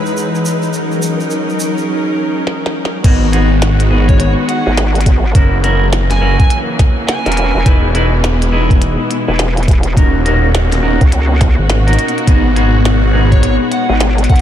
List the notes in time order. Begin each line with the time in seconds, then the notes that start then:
Already playing: E3 G#3 D#4 E4 G#4 B4 C#5 F#5 A#5
0.06 shaker
0.17 shaker
0.35 shaker
0.45 shaker
0.62 shaker
0.73 F#3 C#4 D#4 A#4, shaker
0.92 shaker
1.02 shaker
1.20 shaker
1.31 shaker
1.49 shaker
1.60 shaker
1.78 shaker
2.47 snare
2.66 snare
2.85 snare
3.03 G#1 D#3 G#3 B3 D#4 F#4 G#4, kick, closed hi-hat, crash
3.33 B3 D#4 F#4 G#4, closed hi-hat
3.62 snare, closed hi-hat
3.80 closed hi-hat
3.90 G#1 B3 D#4 F#4 G#4
4.09 C#5, kick, closed hi-hat
4.19 C#5, closed hi-hat
4.49 F#5, closed hi-hat
4.66 G#1 B3 D#4 F#4 G#4
4.77 snare, closed hi-hat
4.95 closed hi-hat
5.01 closed hi-hat
5.06 G#1, kick, closed hi-hat
5.34 F#1 C#3 E3 F#3 A#3 C#4 E4 F#4 A#4, kick, closed hi-hat
5.63 C#4 E4 F#4 A#4, closed hi-hat
5.93 snare, closed hi-hat
6.11 G#5, snare, closed hi-hat
6.21 F#1 C#4 E4 F#4 A#4
6.39 G#5, kick, closed hi-hat
6.50 closed hi-hat
6.79 kick, snare, closed hi-hat
7.08 G#5, snare, closed hi-hat
7.25 E1 C#4 E4 F#4 A#4, closed hi-hat
7.32 closed hi-hat
7.37 closed hi-hat
7.55 E1
7.66 E1 B2 G#3 B3 D#4 E4 G#4 B4, kick, closed hi-hat
7.94 D#4 E4 G#4 B4, closed hi-hat
8.24 snare, closed hi-hat
8.42 closed hi-hat
8.52 E1 D#4 E4 G#4 B4
8.70 kick, closed hi-hat
8.82 closed hi-hat
9.11 closed hi-hat
9.28 E1 D#4 E4 G#4 B4
9.39 snare, closed hi-hat
9.57 closed hi-hat
9.63 closed hi-hat
9.68 E1, kick, closed hi-hat
9.71 closed hi-hat
9.83 closed hi-hat
9.96 D#1 A#3 C#4 D#4 F#4 A#4, kick, closed hi-hat
10.25 C#4 D#4 F#4 A#4, closed hi-hat
10.55 snare, closed hi-hat
10.72 snare, closed hi-hat
10.83 D#1 C#4 D#4 F#4 A#4
11.01 C#2, kick, closed hi-hat
11.12 closed hi-hat
11.41 kick, snare, closed hi-hat
11.59 G#1
11.70 snare, closed hi-hat
11.87 C#4 D#4 F#4 A#4, closed hi-hat
11.93 closed hi-hat
11.99 closed hi-hat
12.08 closed hi-hat
12.18 closed hi-hat
12.27 G#1 G#3 B3 D#4 F#4 G#4, kick, closed hi-hat
12.56 B3 D#4 F#4 G#4, closed hi-hat
12.85 snare, closed hi-hat
13.13 G#1 B3 D#4 F#4 G#4
13.32 C#5, kick, closed hi-hat
13.43 C#5, closed hi-hat
13.72 F#5, closed hi-hat
13.89 G#1 B3 D#4 F#4 G#4
14.00 snare, closed hi-hat
14.18 closed hi-hat
14.24 closed hi-hat
14.29 G#1 F#5, kick, closed hi-hat
14.36 closed hi-hat